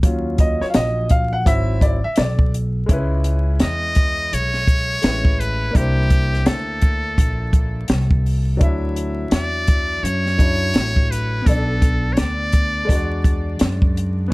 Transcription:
0.03 0.58 D#2 loud
0.03 1.42 F#3 soft
0.03 1.43 C#4 soft
0.03 1.43 F4 medium
0.03 kick loud
0.03 closed hi-hat loud
0.38 0.62 D#5 medium
0.38 kick medium
0.38 closed hi-hat medium
0.61 0.65 C#5 medium
0.61 muted upright bass stroke soft
0.61 snare soft
0.70 0.75 F5 medium
0.74 1.43 A#1 loud
0.74 1.09 D#5 loud
0.74 snare loud
0.74 closed hi-hat medium
1.09 1.33 F5 loud
1.09 kick medium
1.09 closed hi-hat medium
1.33 1.46 F#5 loud
1.45 2.01 G#1 loud
1.45 1.96 F#3 medium
1.45 1.96 C4 medium
1.45 1.97 E4 medium
1.45 1.84 E5 loud
1.45 kick medium
1.45 closed hi-hat loud
1.81 2.02 D5 medium
1.81 kick medium
1.81 closed hi-hat medium
2.04 2.17 E5 loud
2.04 muted upright bass stroke soft
2.16 2.86 B1 loud
2.16 2.51 D5 medium
2.16 snare loud
2.16 closed hi-hat medium
2.39 kick loud
2.54 closed hi-hat medium
2.86 3.57 C#2 loud
2.86 4.98 G#3 medium
2.86 4.99 C#4 medium
2.86 kick loud
2.86 closed hi-hat medium
2.91 5.00 E4 medium
2.91 5.02 B4 medium
3.24 closed hi-hat medium
3.60 4.29 E2 medium
3.60 4.36 D#5 loud
3.60 snare loud
3.60 closed hi-hat medium
3.95 kick medium
3.95 closed hi-hat medium
4.32 5.00 B1 medium
4.32 5.42 C#5 loud
4.32 closed hi-hat medium
4.54 snare soft
4.67 kick medium
4.67 closed hi-hat medium
5.02 5.72 A1 medium
5.02 5.74 G#3 soft
5.02 5.75 C#4 soft
5.02 5.74 E4 soft
5.02 5.76 B4 medium
5.02 snare loud
5.02 closed hi-hat medium
5.25 kick loud
5.40 5.78 B4 medium
5.40 closed hi-hat medium
5.71 8.55 A#3 medium
5.71 8.56 D4 medium
5.75 6.43 C2 loud
5.75 8.57 E4 medium
5.75 6.48 G4 loud
5.75 8.58 C5 medium
5.75 kick loud
5.75 closed hi-hat medium
6.10 kick medium
6.10 closed hi-hat medium
6.33 snare soft
6.46 7.14 D2 medium
6.46 7.90 A4 medium
6.46 snare loud
6.46 closed hi-hat medium
6.81 kick medium
6.81 closed hi-hat medium
7.18 7.86 A#1 loud
7.18 kick medium
7.18 closed hi-hat loud
7.53 kick medium
7.53 closed hi-hat medium
7.88 8.57 C2 loud
7.88 snare loud
7.88 closed hi-hat medium
8.11 kick loud
8.26 open hi-hat soft
8.57 9.29 D2 loud
8.57 10.34 F#3 medium
8.57 10.35 D4 medium
8.57 kick loud
8.57 closed hi-hat loud
8.61 10.36 E4 medium
8.61 10.37 E5 medium
8.96 closed hi-hat medium
9.31 10.00 E2 medium
9.31 10.05 D5 loud
9.31 snare loud
9.31 closed hi-hat medium
9.67 kick medium
9.67 closed hi-hat medium
10.03 10.71 F#2 loud
10.03 11.13 C#5 loud
10.03 closed hi-hat loud
10.26 snare soft
10.37 11.46 F#3 soft
10.37 11.46 D4 soft
10.37 11.47 E4 soft
10.37 11.47 C#5 medium
10.37 kick medium
10.37 closed hi-hat medium
10.74 11.43 A1 medium
10.74 snare loud
10.74 closed hi-hat medium
10.96 kick medium
11.11 11.48 B4 medium
11.11 closed hi-hat medium
11.42 12.84 B3 medium
11.42 11.53 C#4 soft
11.46 12.14 B1 loud
11.46 12.14 A4 medium
11.46 12.87 A4 medium
11.46 12.88 D5 medium
11.46 kick loud
11.46 closed hi-hat medium
11.51 12.86 D4 medium
11.82 kick medium
11.82 closed hi-hat medium
12.13 12.20 C#5 medium
12.13 closed hi-hat medium
12.17 12.86 D2 medium
12.17 13.61 D5 medium
12.17 snare loud
12.52 kick medium
12.52 closed hi-hat medium
12.85 14.27 G#3 medium
12.85 14.28 D4 medium
12.89 13.57 E2 loud
12.89 14.30 F#4 medium
12.89 14.31 D5 medium
12.89 kick medium
12.89 closed hi-hat loud
13.24 kick medium
13.24 closed hi-hat medium
13.59 14.29 F#2 loud
13.59 snare loud
13.59 closed hi-hat medium
13.82 kick loud
13.97 closed hi-hat medium
14.28 14.33 B3 medium
14.28 14.33 C#4 medium

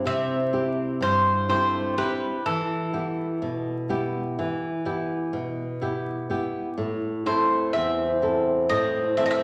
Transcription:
0.00 0.34 C4 soft
0.00 0.35 E4 soft
0.00 0.35 G4 medium
0.05 0.99 C3 medium
0.05 0.98 C4 medium
0.05 1.02 E5 medium
0.53 1.30 C4 soft
0.53 1.30 E4 soft
0.53 1.31 G4 medium
1.01 1.94 G2 medium
1.01 1.47 G3 medium
1.01 1.47 C5 medium
1.48 1.95 A3 medium
1.48 1.96 C4 soft
1.48 1.96 E4 soft
1.48 1.97 G4 medium
1.48 1.94 C5 medium
1.97 2.43 G3 medium
1.97 2.36 C4 soft
1.97 2.36 E4 soft
1.97 2.36 G4 medium
1.97 2.43 B4 medium
2.46 3.39 E3 medium
2.46 5.30 E3 medium
2.46 5.30 A4 medium
2.93 3.70 B3 soft
2.93 3.71 E4 soft
2.93 3.71 G4 medium
3.42 4.35 B2 medium
3.89 4.66 B3 soft
3.89 4.67 E4 soft
3.89 4.67 G4 medium
4.39 5.32 E3 medium
4.85 5.62 B3 soft
4.85 5.63 E4 soft
4.85 5.63 G4 medium
5.33 6.27 B2 medium
5.81 6.29 B3 soft
5.81 6.29 E4 soft
5.81 6.29 G4 medium
6.30 6.68 B3 soft
6.30 6.69 E4 soft
6.30 6.69 G4 medium
6.78 7.71 A2 medium
7.26 7.71 A3 medium
7.26 8.03 C4 soft
7.26 8.03 E4 soft
7.26 8.03 A4 soft
7.26 7.71 C5 medium
7.73 8.67 E2 medium
7.73 8.66 C4 medium
7.73 8.69 E5 medium
8.22 8.99 C4 soft
8.22 8.99 E4 soft
8.22 9.00 A4 medium
8.69 9.43 A2 medium
8.69 9.15 C4 medium
8.69 9.17 D#5 medium
9.17 9.43 E3 soft
9.17 9.24 C4 medium
9.17 9.43 C4 medium
9.17 9.43 A4 medium
9.17 9.25 E5 medium
9.26 9.31 B3 medium
9.26 9.30 D#5 medium
9.31 9.43 C4 medium
9.31 9.43 E5 loud

